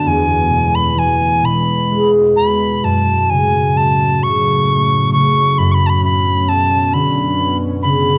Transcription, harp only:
0.00 0.10 F#2 medium
0.00 0.10 D3 soft
0.00 1.09 D4 soft
0.00 1.60 F#4 soft
0.06 2.88 E2 medium
0.49 1.42 B2 soft
0.95 1.48 E3 soft
1.43 2.36 B2 soft
1.91 2.88 G#3 soft
2.37 2.88 B2 soft
2.83 5.57 F#2 soft
3.30 4.21 C#3 soft
3.75 4.27 F#3 soft
4.22 5.13 C#3 soft
4.68 8.01 A3 soft
5.14 5.64 C#3 soft
5.59 8.18 F#2 medium
6.03 8.18 C#4 soft
6.49 6.98 F#3 soft
6.93 7.87 D3 soft
7.38 8.18 B3 soft
7.83 8.18 C#3 medium

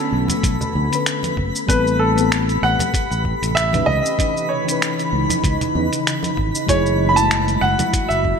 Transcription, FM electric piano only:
0.00 0.86 D3 medium
0.00 0.87 B3 medium
0.00 0.88 C#4 medium
0.00 0.89 A4 medium
0.88 1.63 D3 medium
0.88 1.64 B3 medium
0.93 1.66 C#4 medium
0.93 1.67 B4 medium
1.67 2.12 G3 medium
1.67 2.12 B3 medium
1.67 2.13 C4 medium
1.67 2.14 A4 loud
2.14 3.68 G3 medium
2.14 3.69 B3 medium
2.18 3.70 C4 medium
2.18 3.71 A4 medium
3.72 4.15 E3 medium
3.72 4.15 C#4 medium
3.72 4.16 D#4 medium
3.72 4.16 B4 medium
4.18 4.62 E3 medium
4.18 4.63 C#4 medium
4.18 4.63 D#4 medium
4.18 4.64 B4 medium
4.64 5.71 E3 medium
4.64 5.72 C#4 medium
4.69 5.73 D#4 medium
4.69 5.74 B4 loud
5.73 5.84 E3 medium
5.73 5.85 C#4 medium
5.73 5.86 D#4 medium
5.73 5.86 B4 medium
6.66 7.12 F#3 medium
6.66 7.12 A3 medium
6.66 7.13 E4 medium
6.66 7.14 G#4 loud
7.13 8.39 F#3 medium
7.13 8.39 A3 medium
7.17 8.39 G#3 medium
7.17 8.39 E4 medium

